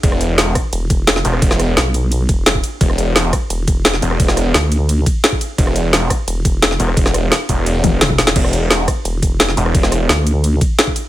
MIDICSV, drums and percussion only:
0, 0, Header, 1, 2, 480
1, 0, Start_track
1, 0, Tempo, 346821
1, 47, Time_signature, 4, 2, 24, 8
1, 15344, End_track
2, 0, Start_track
2, 0, Title_t, "Drums"
2, 47, Note_on_c, 9, 36, 127
2, 47, Note_on_c, 9, 42, 77
2, 47, Note_on_c, 9, 51, 72
2, 167, Note_on_c, 9, 37, 36
2, 185, Note_off_c, 9, 42, 0
2, 185, Note_off_c, 9, 51, 0
2, 186, Note_off_c, 9, 36, 0
2, 287, Note_on_c, 9, 42, 86
2, 287, Note_on_c, 9, 51, 50
2, 305, Note_off_c, 9, 37, 0
2, 425, Note_off_c, 9, 42, 0
2, 425, Note_off_c, 9, 51, 0
2, 526, Note_on_c, 9, 38, 117
2, 526, Note_on_c, 9, 42, 79
2, 526, Note_on_c, 9, 51, 71
2, 664, Note_off_c, 9, 38, 0
2, 664, Note_off_c, 9, 42, 0
2, 664, Note_off_c, 9, 51, 0
2, 766, Note_on_c, 9, 37, 49
2, 766, Note_on_c, 9, 42, 91
2, 766, Note_on_c, 9, 51, 54
2, 767, Note_on_c, 9, 36, 65
2, 904, Note_off_c, 9, 37, 0
2, 904, Note_off_c, 9, 42, 0
2, 904, Note_off_c, 9, 51, 0
2, 906, Note_off_c, 9, 36, 0
2, 1006, Note_on_c, 9, 42, 84
2, 1006, Note_on_c, 9, 51, 74
2, 1144, Note_off_c, 9, 42, 0
2, 1144, Note_off_c, 9, 51, 0
2, 1247, Note_on_c, 9, 42, 92
2, 1247, Note_on_c, 9, 51, 53
2, 1248, Note_on_c, 9, 36, 113
2, 1385, Note_off_c, 9, 42, 0
2, 1385, Note_off_c, 9, 51, 0
2, 1386, Note_off_c, 9, 36, 0
2, 1486, Note_on_c, 9, 38, 127
2, 1486, Note_on_c, 9, 42, 82
2, 1486, Note_on_c, 9, 51, 75
2, 1607, Note_off_c, 9, 38, 0
2, 1607, Note_on_c, 9, 38, 41
2, 1624, Note_off_c, 9, 42, 0
2, 1624, Note_off_c, 9, 51, 0
2, 1727, Note_on_c, 9, 42, 94
2, 1727, Note_on_c, 9, 51, 52
2, 1746, Note_off_c, 9, 38, 0
2, 1847, Note_on_c, 9, 37, 37
2, 1866, Note_off_c, 9, 42, 0
2, 1866, Note_off_c, 9, 51, 0
2, 1966, Note_on_c, 9, 42, 81
2, 1966, Note_on_c, 9, 51, 74
2, 1968, Note_on_c, 9, 36, 127
2, 1985, Note_off_c, 9, 37, 0
2, 2087, Note_on_c, 9, 37, 34
2, 2087, Note_on_c, 9, 38, 39
2, 2105, Note_off_c, 9, 42, 0
2, 2105, Note_off_c, 9, 51, 0
2, 2106, Note_off_c, 9, 36, 0
2, 2208, Note_off_c, 9, 37, 0
2, 2208, Note_on_c, 9, 37, 33
2, 2208, Note_on_c, 9, 42, 85
2, 2208, Note_on_c, 9, 51, 51
2, 2225, Note_off_c, 9, 38, 0
2, 2346, Note_off_c, 9, 37, 0
2, 2346, Note_off_c, 9, 42, 0
2, 2346, Note_off_c, 9, 51, 0
2, 2448, Note_on_c, 9, 38, 127
2, 2448, Note_on_c, 9, 42, 75
2, 2448, Note_on_c, 9, 51, 68
2, 2587, Note_off_c, 9, 38, 0
2, 2587, Note_off_c, 9, 42, 0
2, 2587, Note_off_c, 9, 51, 0
2, 2689, Note_on_c, 9, 42, 88
2, 2689, Note_on_c, 9, 51, 53
2, 2827, Note_off_c, 9, 42, 0
2, 2827, Note_off_c, 9, 51, 0
2, 2928, Note_on_c, 9, 42, 80
2, 2928, Note_on_c, 9, 51, 77
2, 3067, Note_off_c, 9, 42, 0
2, 3067, Note_off_c, 9, 51, 0
2, 3168, Note_on_c, 9, 36, 106
2, 3168, Note_on_c, 9, 42, 91
2, 3168, Note_on_c, 9, 51, 57
2, 3307, Note_off_c, 9, 36, 0
2, 3307, Note_off_c, 9, 42, 0
2, 3307, Note_off_c, 9, 51, 0
2, 3408, Note_on_c, 9, 38, 127
2, 3408, Note_on_c, 9, 42, 78
2, 3408, Note_on_c, 9, 51, 72
2, 3528, Note_on_c, 9, 36, 63
2, 3547, Note_off_c, 9, 38, 0
2, 3547, Note_off_c, 9, 42, 0
2, 3547, Note_off_c, 9, 51, 0
2, 3648, Note_on_c, 9, 42, 89
2, 3648, Note_on_c, 9, 51, 52
2, 3667, Note_off_c, 9, 36, 0
2, 3786, Note_off_c, 9, 42, 0
2, 3786, Note_off_c, 9, 51, 0
2, 3888, Note_on_c, 9, 36, 127
2, 3888, Note_on_c, 9, 42, 78
2, 3888, Note_on_c, 9, 51, 78
2, 4008, Note_on_c, 9, 37, 33
2, 4026, Note_off_c, 9, 36, 0
2, 4026, Note_off_c, 9, 42, 0
2, 4026, Note_off_c, 9, 51, 0
2, 4129, Note_on_c, 9, 42, 85
2, 4129, Note_on_c, 9, 51, 51
2, 4147, Note_off_c, 9, 37, 0
2, 4267, Note_off_c, 9, 42, 0
2, 4267, Note_off_c, 9, 51, 0
2, 4369, Note_on_c, 9, 38, 116
2, 4369, Note_on_c, 9, 42, 75
2, 4369, Note_on_c, 9, 51, 71
2, 4507, Note_off_c, 9, 38, 0
2, 4507, Note_off_c, 9, 42, 0
2, 4507, Note_off_c, 9, 51, 0
2, 4608, Note_on_c, 9, 36, 62
2, 4608, Note_on_c, 9, 37, 47
2, 4608, Note_on_c, 9, 42, 94
2, 4608, Note_on_c, 9, 51, 55
2, 4747, Note_off_c, 9, 36, 0
2, 4747, Note_off_c, 9, 37, 0
2, 4747, Note_off_c, 9, 42, 0
2, 4747, Note_off_c, 9, 51, 0
2, 4847, Note_on_c, 9, 42, 80
2, 4847, Note_on_c, 9, 51, 76
2, 4986, Note_off_c, 9, 42, 0
2, 4986, Note_off_c, 9, 51, 0
2, 5087, Note_on_c, 9, 42, 92
2, 5087, Note_on_c, 9, 51, 58
2, 5088, Note_on_c, 9, 36, 109
2, 5226, Note_off_c, 9, 42, 0
2, 5226, Note_off_c, 9, 51, 0
2, 5227, Note_off_c, 9, 36, 0
2, 5327, Note_on_c, 9, 38, 127
2, 5327, Note_on_c, 9, 42, 84
2, 5327, Note_on_c, 9, 51, 78
2, 5447, Note_off_c, 9, 38, 0
2, 5447, Note_on_c, 9, 38, 38
2, 5465, Note_off_c, 9, 42, 0
2, 5465, Note_off_c, 9, 51, 0
2, 5569, Note_on_c, 9, 42, 86
2, 5569, Note_on_c, 9, 51, 57
2, 5585, Note_off_c, 9, 38, 0
2, 5689, Note_on_c, 9, 37, 37
2, 5707, Note_off_c, 9, 42, 0
2, 5707, Note_off_c, 9, 51, 0
2, 5808, Note_on_c, 9, 36, 120
2, 5809, Note_on_c, 9, 42, 81
2, 5809, Note_on_c, 9, 51, 82
2, 5827, Note_off_c, 9, 37, 0
2, 5929, Note_on_c, 9, 37, 34
2, 5929, Note_on_c, 9, 38, 39
2, 5947, Note_off_c, 9, 36, 0
2, 5947, Note_off_c, 9, 42, 0
2, 5947, Note_off_c, 9, 51, 0
2, 6049, Note_off_c, 9, 37, 0
2, 6049, Note_on_c, 9, 37, 30
2, 6049, Note_on_c, 9, 42, 92
2, 6049, Note_on_c, 9, 51, 53
2, 6068, Note_off_c, 9, 38, 0
2, 6188, Note_off_c, 9, 37, 0
2, 6188, Note_off_c, 9, 42, 0
2, 6188, Note_off_c, 9, 51, 0
2, 6289, Note_on_c, 9, 38, 119
2, 6289, Note_on_c, 9, 42, 82
2, 6289, Note_on_c, 9, 51, 74
2, 6427, Note_off_c, 9, 38, 0
2, 6427, Note_off_c, 9, 42, 0
2, 6427, Note_off_c, 9, 51, 0
2, 6528, Note_on_c, 9, 42, 92
2, 6528, Note_on_c, 9, 51, 56
2, 6667, Note_off_c, 9, 42, 0
2, 6667, Note_off_c, 9, 51, 0
2, 6769, Note_on_c, 9, 42, 78
2, 6769, Note_on_c, 9, 51, 83
2, 6907, Note_off_c, 9, 42, 0
2, 6907, Note_off_c, 9, 51, 0
2, 7008, Note_on_c, 9, 36, 109
2, 7009, Note_on_c, 9, 42, 94
2, 7009, Note_on_c, 9, 51, 59
2, 7147, Note_off_c, 9, 36, 0
2, 7147, Note_off_c, 9, 42, 0
2, 7147, Note_off_c, 9, 51, 0
2, 7249, Note_on_c, 9, 38, 121
2, 7249, Note_on_c, 9, 42, 81
2, 7249, Note_on_c, 9, 51, 81
2, 7368, Note_on_c, 9, 36, 60
2, 7387, Note_off_c, 9, 38, 0
2, 7387, Note_off_c, 9, 42, 0
2, 7387, Note_off_c, 9, 51, 0
2, 7488, Note_on_c, 9, 42, 93
2, 7488, Note_on_c, 9, 51, 58
2, 7507, Note_off_c, 9, 36, 0
2, 7627, Note_off_c, 9, 42, 0
2, 7627, Note_off_c, 9, 51, 0
2, 7728, Note_on_c, 9, 36, 118
2, 7729, Note_on_c, 9, 42, 86
2, 7729, Note_on_c, 9, 51, 83
2, 7848, Note_on_c, 9, 37, 34
2, 7867, Note_off_c, 9, 36, 0
2, 7867, Note_off_c, 9, 42, 0
2, 7867, Note_off_c, 9, 51, 0
2, 7968, Note_on_c, 9, 42, 92
2, 7968, Note_on_c, 9, 51, 56
2, 7987, Note_off_c, 9, 37, 0
2, 8106, Note_off_c, 9, 42, 0
2, 8106, Note_off_c, 9, 51, 0
2, 8208, Note_on_c, 9, 38, 110
2, 8208, Note_on_c, 9, 42, 80
2, 8208, Note_on_c, 9, 51, 76
2, 8346, Note_off_c, 9, 38, 0
2, 8346, Note_off_c, 9, 42, 0
2, 8346, Note_off_c, 9, 51, 0
2, 8448, Note_on_c, 9, 36, 60
2, 8448, Note_on_c, 9, 37, 47
2, 8448, Note_on_c, 9, 42, 101
2, 8448, Note_on_c, 9, 51, 55
2, 8586, Note_off_c, 9, 36, 0
2, 8586, Note_off_c, 9, 37, 0
2, 8586, Note_off_c, 9, 42, 0
2, 8586, Note_off_c, 9, 51, 0
2, 8687, Note_on_c, 9, 42, 83
2, 8687, Note_on_c, 9, 51, 83
2, 8826, Note_off_c, 9, 42, 0
2, 8826, Note_off_c, 9, 51, 0
2, 8927, Note_on_c, 9, 36, 105
2, 8928, Note_on_c, 9, 42, 100
2, 8928, Note_on_c, 9, 51, 59
2, 9066, Note_off_c, 9, 36, 0
2, 9066, Note_off_c, 9, 42, 0
2, 9066, Note_off_c, 9, 51, 0
2, 9168, Note_on_c, 9, 38, 121
2, 9168, Note_on_c, 9, 42, 85
2, 9168, Note_on_c, 9, 51, 83
2, 9288, Note_off_c, 9, 38, 0
2, 9288, Note_on_c, 9, 38, 36
2, 9307, Note_off_c, 9, 42, 0
2, 9307, Note_off_c, 9, 51, 0
2, 9407, Note_on_c, 9, 42, 97
2, 9407, Note_on_c, 9, 51, 55
2, 9426, Note_off_c, 9, 38, 0
2, 9527, Note_on_c, 9, 37, 35
2, 9546, Note_off_c, 9, 42, 0
2, 9546, Note_off_c, 9, 51, 0
2, 9647, Note_on_c, 9, 36, 122
2, 9647, Note_on_c, 9, 42, 92
2, 9647, Note_on_c, 9, 51, 79
2, 9666, Note_off_c, 9, 37, 0
2, 9767, Note_on_c, 9, 37, 36
2, 9767, Note_on_c, 9, 38, 37
2, 9785, Note_off_c, 9, 42, 0
2, 9785, Note_off_c, 9, 51, 0
2, 9786, Note_off_c, 9, 36, 0
2, 9887, Note_off_c, 9, 37, 0
2, 9887, Note_on_c, 9, 37, 33
2, 9887, Note_on_c, 9, 42, 100
2, 9887, Note_on_c, 9, 51, 54
2, 9906, Note_off_c, 9, 38, 0
2, 10025, Note_off_c, 9, 37, 0
2, 10025, Note_off_c, 9, 42, 0
2, 10025, Note_off_c, 9, 51, 0
2, 10126, Note_on_c, 9, 38, 116
2, 10126, Note_on_c, 9, 42, 81
2, 10126, Note_on_c, 9, 51, 75
2, 10264, Note_off_c, 9, 38, 0
2, 10264, Note_off_c, 9, 42, 0
2, 10264, Note_off_c, 9, 51, 0
2, 10366, Note_on_c, 9, 42, 99
2, 10366, Note_on_c, 9, 51, 58
2, 10367, Note_on_c, 9, 36, 61
2, 10505, Note_off_c, 9, 42, 0
2, 10505, Note_off_c, 9, 51, 0
2, 10506, Note_off_c, 9, 36, 0
2, 10607, Note_on_c, 9, 42, 86
2, 10607, Note_on_c, 9, 51, 80
2, 10745, Note_off_c, 9, 42, 0
2, 10745, Note_off_c, 9, 51, 0
2, 10848, Note_on_c, 9, 36, 105
2, 10848, Note_on_c, 9, 42, 104
2, 10848, Note_on_c, 9, 48, 67
2, 10848, Note_on_c, 9, 51, 57
2, 10986, Note_off_c, 9, 36, 0
2, 10986, Note_off_c, 9, 42, 0
2, 10986, Note_off_c, 9, 48, 0
2, 10986, Note_off_c, 9, 51, 0
2, 11087, Note_on_c, 9, 38, 125
2, 11087, Note_on_c, 9, 42, 86
2, 11087, Note_on_c, 9, 47, 81
2, 11087, Note_on_c, 9, 51, 83
2, 11207, Note_off_c, 9, 47, 0
2, 11207, Note_on_c, 9, 36, 55
2, 11207, Note_on_c, 9, 47, 74
2, 11226, Note_off_c, 9, 38, 0
2, 11226, Note_off_c, 9, 42, 0
2, 11226, Note_off_c, 9, 51, 0
2, 11327, Note_on_c, 9, 38, 95
2, 11327, Note_on_c, 9, 42, 101
2, 11327, Note_on_c, 9, 51, 55
2, 11345, Note_off_c, 9, 47, 0
2, 11346, Note_off_c, 9, 36, 0
2, 11446, Note_off_c, 9, 38, 0
2, 11446, Note_on_c, 9, 38, 94
2, 11466, Note_off_c, 9, 42, 0
2, 11466, Note_off_c, 9, 51, 0
2, 11567, Note_on_c, 9, 36, 123
2, 11567, Note_on_c, 9, 42, 86
2, 11567, Note_on_c, 9, 49, 81
2, 11567, Note_on_c, 9, 51, 75
2, 11585, Note_off_c, 9, 38, 0
2, 11687, Note_on_c, 9, 37, 36
2, 11706, Note_off_c, 9, 36, 0
2, 11706, Note_off_c, 9, 42, 0
2, 11706, Note_off_c, 9, 49, 0
2, 11706, Note_off_c, 9, 51, 0
2, 11807, Note_on_c, 9, 42, 93
2, 11807, Note_on_c, 9, 51, 52
2, 11825, Note_off_c, 9, 37, 0
2, 11945, Note_off_c, 9, 42, 0
2, 11945, Note_off_c, 9, 51, 0
2, 12048, Note_on_c, 9, 38, 119
2, 12048, Note_on_c, 9, 42, 83
2, 12048, Note_on_c, 9, 51, 75
2, 12186, Note_off_c, 9, 38, 0
2, 12186, Note_off_c, 9, 42, 0
2, 12186, Note_off_c, 9, 51, 0
2, 12288, Note_on_c, 9, 36, 62
2, 12288, Note_on_c, 9, 37, 54
2, 12288, Note_on_c, 9, 42, 102
2, 12288, Note_on_c, 9, 51, 53
2, 12426, Note_off_c, 9, 36, 0
2, 12427, Note_off_c, 9, 37, 0
2, 12427, Note_off_c, 9, 42, 0
2, 12427, Note_off_c, 9, 51, 0
2, 12528, Note_on_c, 9, 42, 85
2, 12528, Note_on_c, 9, 51, 77
2, 12666, Note_off_c, 9, 42, 0
2, 12666, Note_off_c, 9, 51, 0
2, 12768, Note_on_c, 9, 36, 105
2, 12768, Note_on_c, 9, 42, 107
2, 12768, Note_on_c, 9, 51, 56
2, 12906, Note_off_c, 9, 36, 0
2, 12906, Note_off_c, 9, 42, 0
2, 12906, Note_off_c, 9, 51, 0
2, 13007, Note_on_c, 9, 38, 123
2, 13007, Note_on_c, 9, 42, 88
2, 13007, Note_on_c, 9, 51, 75
2, 13128, Note_off_c, 9, 38, 0
2, 13128, Note_on_c, 9, 38, 37
2, 13146, Note_off_c, 9, 42, 0
2, 13146, Note_off_c, 9, 51, 0
2, 13248, Note_on_c, 9, 42, 96
2, 13248, Note_on_c, 9, 51, 52
2, 13266, Note_off_c, 9, 38, 0
2, 13369, Note_on_c, 9, 37, 39
2, 13386, Note_off_c, 9, 42, 0
2, 13386, Note_off_c, 9, 51, 0
2, 13488, Note_on_c, 9, 36, 127
2, 13489, Note_on_c, 9, 42, 86
2, 13489, Note_on_c, 9, 51, 75
2, 13508, Note_off_c, 9, 37, 0
2, 13609, Note_on_c, 9, 37, 36
2, 13609, Note_on_c, 9, 38, 38
2, 13626, Note_off_c, 9, 36, 0
2, 13627, Note_off_c, 9, 42, 0
2, 13627, Note_off_c, 9, 51, 0
2, 13729, Note_off_c, 9, 37, 0
2, 13729, Note_on_c, 9, 37, 34
2, 13729, Note_on_c, 9, 42, 94
2, 13729, Note_on_c, 9, 51, 51
2, 13747, Note_off_c, 9, 38, 0
2, 13867, Note_off_c, 9, 37, 0
2, 13867, Note_off_c, 9, 42, 0
2, 13867, Note_off_c, 9, 51, 0
2, 13969, Note_on_c, 9, 38, 122
2, 13969, Note_on_c, 9, 42, 77
2, 13969, Note_on_c, 9, 51, 71
2, 14107, Note_off_c, 9, 38, 0
2, 14107, Note_off_c, 9, 42, 0
2, 14107, Note_off_c, 9, 51, 0
2, 14208, Note_on_c, 9, 42, 97
2, 14208, Note_on_c, 9, 51, 52
2, 14346, Note_off_c, 9, 42, 0
2, 14346, Note_off_c, 9, 51, 0
2, 14447, Note_on_c, 9, 42, 84
2, 14447, Note_on_c, 9, 51, 77
2, 14585, Note_off_c, 9, 42, 0
2, 14585, Note_off_c, 9, 51, 0
2, 14688, Note_on_c, 9, 36, 112
2, 14688, Note_on_c, 9, 42, 100
2, 14688, Note_on_c, 9, 51, 52
2, 14826, Note_off_c, 9, 36, 0
2, 14826, Note_off_c, 9, 42, 0
2, 14826, Note_off_c, 9, 51, 0
2, 14928, Note_on_c, 9, 38, 127
2, 14928, Note_on_c, 9, 42, 83
2, 14928, Note_on_c, 9, 51, 74
2, 15047, Note_on_c, 9, 36, 66
2, 15066, Note_off_c, 9, 38, 0
2, 15066, Note_off_c, 9, 42, 0
2, 15066, Note_off_c, 9, 51, 0
2, 15167, Note_on_c, 9, 42, 98
2, 15167, Note_on_c, 9, 51, 55
2, 15186, Note_off_c, 9, 36, 0
2, 15306, Note_off_c, 9, 42, 0
2, 15306, Note_off_c, 9, 51, 0
2, 15344, End_track
0, 0, End_of_file